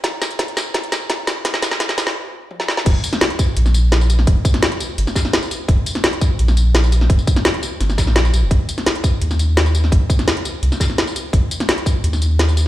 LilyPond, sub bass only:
\new Staff \with { instrumentName = "Sub bass" } { \clef bass \time 4/4 \key ees \major \tempo 4 = 170 r1 | r1 | ees,,16 r4. r16 bes,,2 | ees,,16 r4. r16 g,,16 r4. r16 |
ees,,16 r4. r16 bes,,2 | ees,,16 r4. r16 g,,8 bes,,4 bes,,16 ees,,16 | aes,,16 r4. r16 ees,2 | aes,,16 r4. r16 c,16 r4. r16 |
aes,,16 r4. r16 ees,2 | }